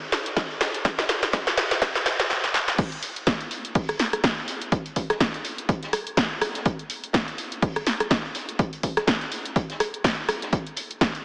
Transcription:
0.12 snare, closed hi-hat, open hi-hat
0.26 closed hi-hat
0.37 kick, snare, closed hi-hat
0.51 closed hi-hat
0.61 snare, closed hi-hat, open hi-hat
0.74 closed hi-hat
0.85 kick, snare, closed hi-hat
0.98 snare, closed hi-hat
1.09 snare, open hi-hat
1.23 snare, closed hi-hat
1.33 kick, snare, closed hi-hat
1.47 snare
1.57 snare, closed hi-hat, open hi-hat
1.71 snare, closed hi-hat
1.82 kick, snare, closed hi-hat
1.95 snare
2.06 snare, closed hi-hat, open hi-hat
2.19 snare, closed hi-hat
2.30 snare
2.44 snare
2.54 snare
2.68 snare
2.78 kick, closed hi-hat, crash
2.92 closed hi-hat
3.03 closed hi-hat, open hi-hat
3.16 closed hi-hat
3.27 kick, snare, closed hi-hat
3.41 closed hi-hat
3.51 closed hi-hat, open hi-hat
3.65 closed hi-hat
3.75 kick, closed hi-hat, open hi-hat
3.89 cross-stick, closed hi-hat
3.99 snare, closed hi-hat, open hi-hat
4.13 cross-stick, closed hi-hat
4.24 kick, snare, closed hi-hat
4.38 closed hi-hat
4.48 snare, closed hi-hat, open hi-hat
4.62 closed hi-hat
4.72 kick, closed hi-hat
4.86 closed hi-hat
4.96 kick, closed hi-hat, open hi-hat
5.10 cross-stick, snare, closed hi-hat
5.20 kick, snare, closed hi-hat
5.34 snare, closed hi-hat
5.45 closed hi-hat, open hi-hat
5.58 closed hi-hat
5.69 kick, closed hi-hat
5.83 snare, closed hi-hat
5.93 cross-stick, closed hi-hat, open hi-hat
6.07 closed hi-hat
6.17 kick, snare, closed hi-hat
6.41 cross-stick, closed hi-hat, open hi-hat
6.54 snare, closed hi-hat
6.65 kick, closed hi-hat
6.79 closed hi-hat
6.90 closed hi-hat, open hi-hat
7.04 closed hi-hat
7.13 kick, snare, closed hi-hat
7.28 closed hi-hat
7.38 closed hi-hat, open hi-hat
7.52 closed hi-hat
7.62 kick, closed hi-hat, open hi-hat
7.76 cross-stick, closed hi-hat
7.87 snare, closed hi-hat, open hi-hat
8.00 cross-stick, closed hi-hat
8.10 kick, snare, closed hi-hat
8.25 closed hi-hat
8.35 snare, closed hi-hat, open hi-hat
8.49 closed hi-hat
8.59 kick, closed hi-hat
8.73 closed hi-hat
8.83 kick, closed hi-hat, open hi-hat
8.97 cross-stick, snare, closed hi-hat
9.07 kick, snare, closed hi-hat
9.21 snare, closed hi-hat
9.31 closed hi-hat, open hi-hat
9.45 closed hi-hat
9.56 kick, closed hi-hat
9.70 snare, closed hi-hat
9.80 cross-stick, closed hi-hat, open hi-hat
9.94 closed hi-hat
10.04 kick, snare, closed hi-hat
10.29 cross-stick, closed hi-hat, open hi-hat
10.42 snare, closed hi-hat
10.52 kick, closed hi-hat
10.67 closed hi-hat
10.77 closed hi-hat, open hi-hat
10.91 closed hi-hat
11.01 kick, snare, closed hi-hat
11.15 closed hi-hat

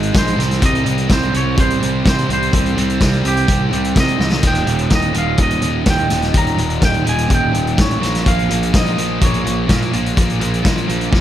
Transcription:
Already playing: G#1 G#2 D#3 G#3 C5
0.03 closed hi-hat
0.15 A#1 G#2 D#3 G#3 C5, kick, snare, closed hi-hat
0.27 closed hi-hat
0.38 C2 C3 G3 C4, snare, closed hi-hat
0.51 snare, closed hi-hat
0.62 C2 C3 G3 C4 D#5, kick, closed hi-hat
0.75 closed hi-hat
0.85 C2 C3 G3 C4, closed hi-hat
0.98 closed hi-hat
1.09 C2 C3 G3 C4 C5, kick, snare, closed hi-hat
1.23 closed hi-hat
1.34 C2 C3 G3 C4 C#5, closed hi-hat
1.57 C2 C3 G3 C4 C5, kick, closed hi-hat
1.70 closed hi-hat
1.82 C2 C3 G3 C4, closed hi-hat
2.05 C3 G3 C4 C5, kick, snare, closed hi-hat
2.18 closed hi-hat
2.29 C2 C3 G3 C4, closed hi-hat
2.33 C5
2.42 closed hi-hat
2.53 C2 C3 G3 C4, kick, closed hi-hat
2.66 closed hi-hat
2.76 C2 C3 G3 C4, closed hi-hat
2.89 closed hi-hat
3.01 C2 C3 G3 C4, kick, snare, closed hi-hat
3.13 closed hi-hat
3.25 C2 C3 G3 C4 G4, closed hi-hat
3.37 closed hi-hat
3.47 C2 C3 G3 C4, kick, closed hi-hat
3.70 C2 C3 G3 C4, closed hi-hat
3.84 closed hi-hat
3.95 C3 G3 C4, kick, snare, closed hi-hat
4.00 D#5
4.08 closed hi-hat
4.19 C2 C3 G3 C4, snare
4.32 snare
4.43 D#1 D#2 A#2 D#3, kick, closed hi-hat, crash
4.47 G5
4.55 closed hi-hat
4.66 D#1 D#2 A#2 D#3, closed hi-hat
4.78 closed hi-hat
4.90 D#1 D#2 A#2 D#3, kick, snare, closed hi-hat
4.95 D#5
5.02 closed hi-hat
5.14 D#1 D#2 A#2 D#3, closed hi-hat
5.18 F5
5.38 D#1 D#2 A#2 D#3, kick, closed hi-hat
5.43 D#5
5.50 closed hi-hat
5.62 D#1 D#2 A#2 D#3, closed hi-hat
5.86 D#2 A#2 D#3, kick, snare, closed hi-hat
5.90 G5
5.98 closed hi-hat
6.10 D#1 D#2 A#2 D#3, snare, closed hi-hat
6.22 snare, closed hi-hat
6.33 D#1 D#2 A#2 D#3, kick, closed hi-hat
6.38 A#5
6.46 closed hi-hat
6.58 D#1 D#2 A#2 D#3, closed hi-hat
6.70 closed hi-hat
6.82 D#1 D#2 A#2 D#3 G5, kick, snare, closed hi-hat
6.94 closed hi-hat
7.06 D#1 D#2 A#2 D#3 G#5, closed hi-hat
7.18 closed hi-hat
7.28 D#1 D#2 A#2, kick, closed hi-hat
7.32 A#2 D#3 G5
7.53 D#1 D#2 A#2 D#3, closed hi-hat
7.67 closed hi-hat
7.78 A1 D#2 A#2 D#3 C#5, kick, snare, closed hi-hat
7.91 closed hi-hat
8.01 A#1 A#2 F3 A#3, snare, closed hi-hat
8.15 snare, closed hi-hat
8.25 A#1 A#2 F3 A#3 F5, kick, closed hi-hat
8.39 closed hi-hat
8.50 A#1 A#2 F3 A#3, closed hi-hat
8.63 closed hi-hat
8.74 A#1 A#2 F3 A#3 D#5, kick, snare, closed hi-hat
8.86 closed hi-hat
8.98 A#1 A#2 F3 A#3, closed hi-hat
9.22 A#1 A#2 F3 A#3 C#5, kick, closed hi-hat
9.34 closed hi-hat
9.45 A#1 A#2 F3 A#3, closed hi-hat
9.69 A#2 F3 A#3, kick, snare, closed hi-hat
9.82 closed hi-hat
9.93 A#1 A#2 F3 A#3, closed hi-hat
10.06 closed hi-hat
10.17 A#1 A#2 F3 A#3, kick, closed hi-hat
10.30 closed hi-hat
10.40 A#1 A#2 F3 A#3, closed hi-hat
10.54 closed hi-hat
10.63 A#1 A#2 F3 A#3, kick, snare, closed hi-hat
10.78 closed hi-hat
10.87 A#1 A#2 F3 A#3, closed hi-hat
11.01 closed hi-hat
11.11 A#1 A#2 F3 A#3, kick, snare

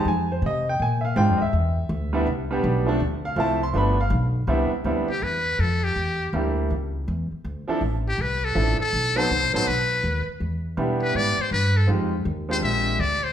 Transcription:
0.05 F2 G#5
0.32 C5
0.42 C3
0.46 D#5
0.69 G5
0.80 A#2 G#5
1.01 E5 F5
1.16 G#2 G#3 C4 D4 F4 G5
1.29 F2
1.37 D2 D#5
1.42 E5
1.53 E2
1.89 D2
2.13 G3 B3 D4 E4
2.27 C2
2.51 G3 B3 D4 G4
2.64 B1
2.86 F3 A3 C4 D4
3.00 D2
3.25 F5
3.36 C2 F3 A3 C4 E4 A5
3.63 C6
3.73 G1 F3 A3 B3 D4
3.77 B5
4.01 F5
4.10 B1
4.47 C2 G3 B3 C4 D4 E4
4.71 muted upright bass stroke
4.84 D2 G3 B3 C4 D4 E4
5.10 G4
5.22 E2 B4
5.59 F2 A4
5.84 G4
5.96 E2
6.33 D2 G3 A#3 D4 E4 G4
6.70 C#2
7.08 E2
7.32 muted upright bass stroke
7.44 D2
7.68 F3 C4 D4 E4 A4, muted upright bass stroke
7.81 A1
8.08 G4
8.18 C2 B4
8.45 A4
8.55 A1 F3 C4 D4 E4 A4
8.80 A4, muted upright bass stroke
8.93 B1
9.16 F#3 B3 C4 D#4 A4 C5
9.30 C2
9.42 B1
9.54 A1 F#3 B3 C4 D#4 A4 C5
9.67 B1 B4
10.04 D#2
10.27 muted upright bass stroke
10.40 E2
10.77 B2 G3 B3 D4 E4 G4
11.03 B4
11.15 G#2 D5
11.38 C5, muted upright bass stroke
11.51 G2 B4
11.77 A4
11.87 F2 G#3 C4 D#4 F4 G4
12.25 D#2
12.49 G#3 C4 D4 F4 G4 C5
12.62 A#1 E5
12.99 D2 D5
13.24 C5

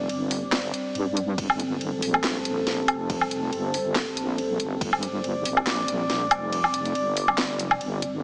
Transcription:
Already playing: G3 C4 D5
0.09 G1, ride
0.31 open hi-hat
0.52 snare, clap, ride
0.74 closed hi-hat
0.95 G2, ride
1.17 closed hi-hat
1.38 G1 A4, kick, ride
1.50 low woodblock
1.60 closed hi-hat
1.81 ride
2.02 A#1, open hi-hat
2.14 low woodblock
2.24 snare, clap, ride
2.45 closed hi-hat
2.67 snare, ride
2.88 F1, closed hi-hat, low woodblock
3.10 kick, ride
3.21 low woodblock
3.31 closed hi-hat
3.52 G1, ride
3.74 open hi-hat
3.95 snare, clap, ride
4.17 A#1, closed hi-hat
4.38 ride
4.60 G1, closed hi-hat
4.81 G1 D5, kick, ride
4.93 low woodblock
5.03 closed hi-hat
5.24 ride
5.45 A#1, open hi-hat
5.57 low woodblock
5.67 snare, clap, ride
5.88 closed hi-hat
6.10 snare, ride
6.31 F1, closed hi-hat, low woodblock
6.53 ride
6.64 low woodblock
6.74 closed hi-hat
6.85 closed hi-hat
6.95 G1, ride
7.17 open hi-hat
7.28 low woodblock
7.38 snare, clap, ride
7.54 F#1
7.59 closed hi-hat
7.71 low woodblock
7.81 G1, ride
8.02 closed hi-hat

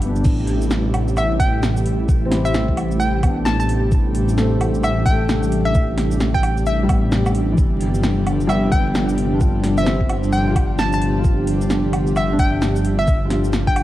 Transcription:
Already playing: G1 C3 F3 G3 D4 E4 G4
0.02 B3, open hi-hat
0.09 D4
0.16 shaker
0.24 A1 C3 G3 A3 E4 G4, kick, crash, shaker
0.47 open hi-hat
0.62 shaker
0.71 snare, shaker
0.94 open hi-hat, low woodblock
1.08 shaker
1.17 E5, low woodblock, shaker
1.40 G5, kick, open hi-hat
1.63 snare, shaker
1.77 shaker
1.86 open hi-hat
2.09 kick, shaker
2.25 C4
2.30 E4, snare, open hi-hat
2.35 G4
2.45 E5, shaker
2.54 snare, shaker
2.68 kick
2.77 open hi-hat, low woodblock
2.91 shaker
3.00 G5, shaker
3.23 B3, kick, open hi-hat, low woodblock
3.28 D4
3.45 A5, snare, shaker
3.60 A5, shaker
3.69 open hi-hat
3.92 D4, kick, shaker
4.15 open hi-hat
4.29 shaker
4.37 A3, snare, shaker
4.42 C4
4.61 open hi-hat, low woodblock
4.74 shaker
4.83 E5, low woodblock, shaker
5.06 G5, kick, open hi-hat
5.11 A3
5.29 snare, shaker
5.43 shaker
5.52 open hi-hat
5.65 E5
5.75 kick, shaker
5.98 snare, open hi-hat
6.11 shaker
6.20 snare, shaker
6.34 G5, kick
6.43 open hi-hat, low woodblock
6.57 shaker
6.66 E5, shaker
6.83 G3
6.88 B3, kick, open hi-hat, low woodblock
7.12 snare, shaker
7.26 low woodblock, shaker
7.35 open hi-hat
7.52 E3
7.58 G1 F3 G4, kick, shaker
7.81 open hi-hat
7.95 shaker
8.03 snare, shaker
8.27 open hi-hat, low woodblock
8.41 shaker
8.47 G3 E5, low woodblock, shaker
8.72 G5, kick, open hi-hat
8.78 B3
8.95 snare, shaker
9.09 shaker
9.18 open hi-hat
9.34 D4
9.39 F4, kick, shaker
9.64 snare, open hi-hat
9.78 E5, shaker
9.82 C4
9.86 snare, shaker
10.01 kick
10.09 open hi-hat, low woodblock
10.23 shaker
10.33 G5, shaker
10.42 D4
10.46 F4
10.52 G4, kick
10.56 open hi-hat, low woodblock
10.79 A5, snare, shaker
10.93 A5, shaker
11.02 open hi-hat
11.19 F4
11.24 kick, shaker
11.47 open hi-hat
11.61 shaker
11.70 snare, shaker
11.93 open hi-hat, low woodblock
12.07 shaker
12.16 E5, low woodblock, shaker
12.32 D4
12.39 G5, kick, open hi-hat
12.62 snare, shaker
12.76 shaker
12.85 open hi-hat
12.99 E5
13.07 kick, shaker
13.25 F4
13.30 snare, open hi-hat
13.44 shaker
13.53 snare, shaker
13.67 G5, kick
13.76 open hi-hat, low woodblock

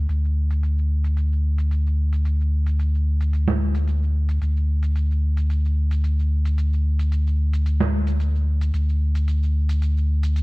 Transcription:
0.09 D2, open hi-hat, cabasa
0.24 cabasa
0.51 open hi-hat, cabasa
0.63 open hi-hat, cabasa
0.78 cabasa
1.04 open hi-hat, cabasa
1.17 open hi-hat, cabasa
1.32 cabasa
1.58 open hi-hat, cabasa
1.71 open hi-hat, cabasa
1.87 cabasa
2.13 open hi-hat, cabasa
2.25 open hi-hat, cabasa
2.40 cabasa
2.66 open hi-hat, cabasa
2.79 open hi-hat, cabasa
2.94 cabasa
3.21 open hi-hat, cabasa
3.33 open hi-hat, cabasa
3.48 low conga, cabasa
3.75 open hi-hat, cabasa
3.88 open hi-hat, cabasa
4.03 cabasa
4.29 open hi-hat, cabasa
4.41 D2, open hi-hat, cabasa
4.57 cabasa
4.83 open hi-hat, cabasa
4.96 open hi-hat, cabasa
5.11 cabasa
5.37 open hi-hat, cabasa
5.50 open hi-hat, cabasa
5.65 cabasa
5.91 open hi-hat, cabasa
6.04 open hi-hat, cabasa
6.19 cabasa
6.45 open hi-hat, cabasa
6.58 open hi-hat, cabasa
6.73 cabasa
6.99 open hi-hat, cabasa
7.12 open hi-hat, cabasa
7.27 cabasa
7.53 open hi-hat, cabasa
7.66 open hi-hat, cabasa
7.80 low conga, cabasa
8.07 open hi-hat, cabasa
8.20 open hi-hat, cabasa
8.35 cabasa
8.61 open hi-hat, cabasa
8.74 D2, open hi-hat, cabasa
8.89 cabasa
9.15 open hi-hat, cabasa
9.28 open hi-hat, cabasa
9.43 cabasa
9.69 open hi-hat, cabasa
9.82 open hi-hat, cabasa
9.97 cabasa
10.23 open hi-hat, cabasa
10.36 open hi-hat, cabasa

